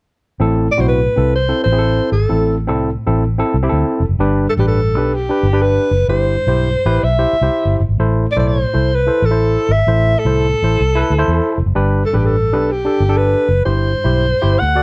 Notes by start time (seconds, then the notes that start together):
0.40 A1 A2 C4 E4 A4
0.71 D5
0.77 B1 C4 E4 F#4 C5
0.88 B4
1.16 C2 C4 E4 A4
1.35 C5
1.49 C4 E4 A4
1.64 A1 C5
1.72 C4 E4 G#4
1.78 A4
2.12 G#1 A4
2.29 A1 A2 C4 E4 A4
2.67 C2 C4 E4 A4
3.07 A1 C4 E4 A4
3.38 C4 E4 A4
3.54 C2
3.63 C4 E4 G4
3.69 D2 A4
4.00 F1
4.09 F#1
4.19 G1 G2 D4 G4 B4
4.49 A4
4.57 A1 D4 G4 B4
4.67 A4
4.95 B1 D4 G4 B4
5.14 G4
5.29 D4 G4 B4
5.43 G1
5.53 D4 G4 B4
5.62 B4
5.91 F#1
6.08 G1 G2 E4 G4 C5
6.47 B1 E4 G4 C5
6.86 A1 E4 G4 B4
7.03 B1 E5
7.19 E4 G4 C5
7.33 muted fingered electric bass stroke
7.41 C2 E4 G4 C5
7.65 G1
7.80 G1
7.89 G#1
7.98 A1 A2 E4 A4 C5
8.32 D5
8.37 B1 E4 A4 C5 D5
8.48 C5
8.74 C2 E4 A4 C5
8.95 B4
9.07 E4 A4 C5
9.22 A1 A4
9.31 E4 A4 C5
9.69 G#1 E5
9.87 A1 A2 E4 A4 C5
10.19 A4
10.25 C2 E4 A4 C5
10.62 A1 E4 A4 C5
10.81 C2
10.95 E4 A4 B4
11.10 D2
11.18 E4 A4 C5
11.28 E2
11.58 F1
11.66 F#1
11.75 G1 G2 D4 G4 B4
12.06 A4
12.13 A1 D4 G4 B4
12.25 A4
12.53 B1 D4 G4 B4
12.72 G4
12.85 D4 G4 A4
13.00 G1
13.09 D4 G4 A4
13.17 B4
13.49 F#1
13.65 G1 G2 E4 G4 C5
14.04 B1 E4 G4 C5
14.42 G1 E4 G4 C5
14.59 D2 D3 F#5
14.75 F#4 A4 D5